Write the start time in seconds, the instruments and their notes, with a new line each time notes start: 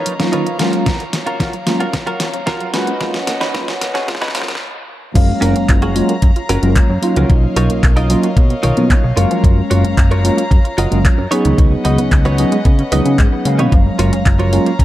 Already playing: clean electric guitar D#4 F4 A#4 B4 C#5, violin section C#5 D#5 F5 A#5
0.06 synth arpeggio sound F#3, open hi-hat
0.19 tine electric piano F#3 A#3 C#4 D#4 F4, synth arpeggio sound A#3, snare, closed hi-hat
0.32 synth arpeggio sound D#3, clean electric guitar D#4 F4 A#4 B4 C#5, closed hi-hat
0.46 synth arpeggio sound F3, closed hi-hat
0.59 tine electric piano F#3 G#3 A#3 C#4 F4, synth arpeggio sound A#3, clean electric guitar F4 F#4 A#4, snare, open hi-hat
0.73 synth arpeggio sound C#4, closed hi-hat
0.86 synth arpeggio sound F3, kick, snare, closed hi-hat
1.00 synth arpeggio sound F#3, closed hi-hat
1.13 synth arpeggio sound A#3, muted clean electric guitar stroke, snare, open hi-hat
1.26 synth arpeggio sound C#4, clean electric guitar F4 F#4 A#4, closed hi-hat
1.40 synth arpeggio sound F3, kick, snare, closed hi-hat
1.53 synth arpeggio sound F#3, closed hi-hat
1.66 tine electric piano F#3 G#3 A#3 C#4 F4, synth arpeggio sound A#3, snare, open hi-hat
1.80 synth arpeggio sound C#4, clean electric guitar F4 F#4 A#4, closed hi-hat
1.93 synth arpeggio sound F3, kick, snare, closed hi-hat
2.06 synth arpeggio sound F#3, clean electric guitar F4 F#4 A#4, closed hi-hat
2.20 synth arpeggio sound A#3, snare, open hi-hat
2.34 synth arpeggio sound C#4, closed hi-hat
2.46 synth arpeggio sound F3, clean electric guitar F4 F#4 A#4, kick, snare, closed hi-hat
2.60 synth arpeggio sound F#3, closed hi-hat
2.73 tine electric piano F#3 G#3 A#3 C#4 F4, synth arpeggio sound A#3, clean electric guitar C#4 D#4 F#4 B4, violin section C#4 B4 D#5 F#5, snare, open hi-hat
2.87 synth arpeggio sound C#4, closed hi-hat
3.00 synth arpeggio sound F3, tine electric piano F#3 G#3 A#3 C#4 F4, kick, snare, closed hi-hat
3.14 synth arpeggio sound F#3, snare, closed hi-hat
3.27 synth arpeggio sound A#3, muted clean electric guitar stroke, snare, open hi-hat
3.40 clean electric guitar C#4 D#4 F#4 B4, synth arpeggio sound C#4, snare, closed hi-hat
3.54 synth arpeggio sound F3, tine electric piano F#3 G#3 A#3 C#4 F4, kick, snare, closed hi-hat
3.68 synth arpeggio sound F#3, snare, open hi-hat
3.81 synth arpeggio sound A#3, snare, open hi-hat
3.94 clean electric guitar C#4 D#4 F#4 G#4, synth arpeggio sound C#4, snare, closed hi-hat
4.07 synth arpeggio sound F3, tine electric piano F#3 G#3 A#3 C#4 F4, kick, snare, closed hi-hat
4.15 snare
4.21 synth arpeggio sound F#3, clean electric guitar C#4 D#4 F#4 B4, snare, closed hi-hat
4.28 snare
4.34 synth arpeggio sound F3, tine electric piano F#3 G#3 A#3 C#4 F4, snare, open hi-hat
4.42 snare
4.48 synth arpeggio sound F#3, snare, closed hi-hat
4.55 snare
5.14 analog synth bass F#1, synth arpeggio sound F3, tine electric piano F#3 G#3 A#3 C#4 F5, violin section C#5 F5 A#5, kick, closed hi-hat, crash
5.29 synth arpeggio sound F#3
5.41 analog synth bass F#1, synth arpeggio sound A#3, clean electric guitar C#4 F4 F#4 A#4, open hi-hat
5.56 analog synth bass F#1, synth arpeggio sound C#4, closed hi-hat
5.69 analog synth bass F#1, synth arpeggio sound F4, muted clean electric guitar stroke, kick, clap, closed hi-hat
5.82 synth arpeggio sound F3, clean electric guitar C#4 F4 F#4 G#4, closed hi-hat
5.95 tine electric piano F#3 G#3 A#3 C#4 F4, synth arpeggio sound F#3, open hi-hat
6.09 synth arpeggio sound A#3, closed hi-hat
6.22 analog synth bass F#2, synth arpeggio sound C#4, kick, closed hi-hat
6.36 synth arpeggio sound F4, closed hi-hat
6.49 analog synth bass F#1, synth arpeggio sound F3, clean electric guitar C#4 F4 F#4 A#4, open hi-hat
6.62 analog synth bass F#1, tine electric piano F#3 G#3 A#3 C#4 F4, synth arpeggio sound F#3, closed hi-hat
6.76 synth arpeggio sound A#3, kick, clap, closed hi-hat
6.89 analog synth bass F#2, synth arpeggio sound C#4, muted clean electric guitar stroke
7.02 tine electric piano F#3 A#3 C#4 D#4 F4, synth arpeggio sound F4, open hi-hat
7.16 analog synth bass C#2, synth arpeggio sound F3, clean electric guitar C#4 F4 F#4 A#4, closed hi-hat
7.29 analog synth bass B1, synth arpeggio sound D#3, violin section A#4 D#5, kick, closed hi-hat
7.44 synth arpeggio sound F3
7.56 analog synth bass B1, synth arpeggio sound F#3, clean electric guitar D#4 F4 A#4 C#5, open hi-hat
7.70 analog synth bass B1, synth arpeggio sound A#3, closed hi-hat
7.83 analog synth bass B1, synth arpeggio sound B3, muted clean electric guitar stroke, kick, clap, closed hi-hat
7.96 synth arpeggio sound D#3, clean electric guitar D#4 F4 A#4 D#5, open hi-hat
8.09 synth arpeggio sound F3, tine electric piano F#3 A#3 C#4 D#4 F4, open hi-hat
8.23 synth arpeggio sound F#3, closed hi-hat
8.37 analog synth bass B2, synth arpeggio sound A#3, kick, closed hi-hat
8.50 synth arpeggio sound B3, closed hi-hat
8.63 analog synth bass B1, synth arpeggio sound D#3, clean electric guitar D#4 F4 A#4 C#5, open hi-hat
8.77 analog synth bass B2, synth arpeggio sound F3, tine electric piano F#3 A#3 C#4 D#4 F4, closed hi-hat
8.90 synth arpeggio sound F#3, kick, clap, closed hi-hat
9.04 analog synth bass B1, synth arpeggio sound A#3, muted clean electric guitar stroke
9.16 analog synth bass F#1, tine electric piano F#3 G#3 A#3 C#4 F5, clean electric guitar F4 F#4 A#4 C#5, synth arpeggio sound F4, violin section A#5, open hi-hat
9.31 synth arpeggio sound F3, closed hi-hat
9.44 analog synth bass F#1, synth arpeggio sound F3, kick, closed hi-hat
9.57 synth arpeggio sound F#3
9.70 analog synth bass F#1, synth arpeggio sound A#3, clean electric guitar F4 F#4 A#4 C#5, open hi-hat
9.84 analog synth bass F#1, synth arpeggio sound C#4, closed hi-hat
9.97 analog synth bass F#1, synth arpeggio sound F4, muted clean electric guitar stroke, kick, clap, closed hi-hat
10.11 synth arpeggio sound F3, clean electric guitar F4 F#4 A#4 C#5, closed hi-hat
10.24 tine electric piano F#3 G#3 A#3 C#4 F4, synth arpeggio sound F#3, open hi-hat
10.37 synth arpeggio sound A#3, closed hi-hat
10.51 analog synth bass F#2, synth arpeggio sound C#4, kick, closed hi-hat
10.64 synth arpeggio sound F4, closed hi-hat
10.78 analog synth bass F#1, synth arpeggio sound F3, clean electric guitar F4 F#4 A#4 D#5, open hi-hat
10.91 analog synth bass F#1, tine electric piano F#3 G#3 A#3 C#4 F4, synth arpeggio sound F#3, closed hi-hat
11.05 synth arpeggio sound A#3, kick, clap, closed hi-hat
11.18 analog synth bass F#2, synth arpeggio sound C#4, muted clean electric guitar stroke
11.31 tine electric piano F#3 B3 C#4 D#4 G#4, synth arpeggio sound C#4, violin section C#4 B4 D#5 F#5, clean electric guitar D#4 F#4 B4 C#5, open hi-hat
11.45 analog synth bass C#2, synth arpeggio sound D#3, closed hi-hat
11.58 analog synth bass C#2, synth arpeggio sound D#3, kick, closed hi-hat
11.71 synth arpeggio sound F#3
11.84 analog synth bass C#2, synth arpeggio sound G#3, clean electric guitar D#4 F#4 B4 D#5, open hi-hat
11.98 analog synth bass C#2, synth arpeggio sound B3, closed hi-hat
12.11 analog synth bass C#2, synth arpeggio sound C#4, muted clean electric guitar stroke, kick, clap, closed hi-hat
12.25 synth arpeggio sound D#3, clean electric guitar D#4 F#4 B4 C#5, open hi-hat
12.38 tine electric piano F#3 B3 C#4 D#4 G#4, synth arpeggio sound F#3, open hi-hat
12.52 synth arpeggio sound G#3, closed hi-hat
12.65 analog synth bass C#3, synth arpeggio sound B3, kick, closed hi-hat
12.79 synth arpeggio sound C#4, closed hi-hat
12.92 analog synth bass C#2, synth arpeggio sound D#3, tine electric piano F#3 B3 C#4 D#4 G#4, clean electric guitar D#4 F#4 B4 D#5, open hi-hat
13.06 analog synth bass C#3, synth arpeggio sound F#3, closed hi-hat
13.19 analog synth bass G#2, synth arpeggio sound G#3, kick, clap, closed hi-hat
13.32 synth arpeggio sound B3, muted clean electric guitar stroke
13.45 analog synth bass C#3, tine electric piano F#3 G#3 A#3 C#4 F5, synth arpeggio sound C#4, open hi-hat
13.59 analog synth bass B2, synth arpeggio sound D#3, clean electric guitar D#4 F#4 B4 C#5, closed hi-hat
13.72 analog synth bass F#1, synth arpeggio sound F3, violin section C#5 F5 A#5, kick, closed hi-hat
13.86 synth arpeggio sound F#3
13.99 analog synth bass F#1, synth arpeggio sound A#3, clean electric guitar F4 F#4 A#4 C#5, open hi-hat
14.13 analog synth bass F#1, synth arpeggio sound C#4, closed hi-hat
14.26 analog synth bass F#1, synth arpeggio sound F4, muted clean electric guitar stroke, kick, clap, closed hi-hat
14.39 synth arpeggio sound F3, clean electric guitar F4 F#4 A#4 C#5, closed hi-hat
14.52 tine electric piano F#3 G#3 A#3 C#4 F4, synth arpeggio sound F#3, open hi-hat
14.66 synth arpeggio sound A#3, closed hi-hat
14.79 analog synth bass F#2, synth arpeggio sound C#4, kick, closed hi-hat